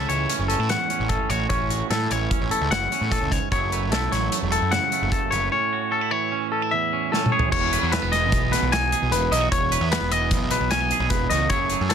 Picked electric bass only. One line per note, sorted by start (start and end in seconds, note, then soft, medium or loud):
0.09 0.25 C#2 medium
0.39 0.55 F#1 medium
0.59 0.75 A2 medium
1.00 1.15 A1 medium
1.30 1.46 A1 medium
1.50 1.81 A1 medium
1.90 2.06 A2 medium
2.11 2.26 A1 medium
2.41 2.49 A1 medium
2.61 2.69 C#2 medium
2.70 2.86 F#1 medium
3.01 3.17 A2 medium
3.22 3.37 C#2 medium
3.52 3.92 F#1 medium
3.92 4.08 B1 medium
4.12 4.28 A1 medium
4.42 4.58 E1 medium
4.62 4.77 F#2 medium
5.02 5.18 F#1 medium
5.32 5.48 F#1 medium
7.52 7.76 E1 medium
7.83 7.98 E2 medium
8.03 8.32 E1 medium
8.32 8.55 B1 medium
8.62 8.93 B1 medium
9.02 9.10 B1 medium
9.12 9.27 E1 loud
9.31 9.47 B1 medium
9.52 9.75 E1 medium
9.81 9.97 E2 medium
10.01 10.33 E1 medium
10.31 10.54 B1 loud
10.60 10.91 B1 medium
11.00 11.08 B1 medium
11.31 11.46 C#2 medium
11.50 11.73 F#1 loud
11.81 11.94 F#2 loud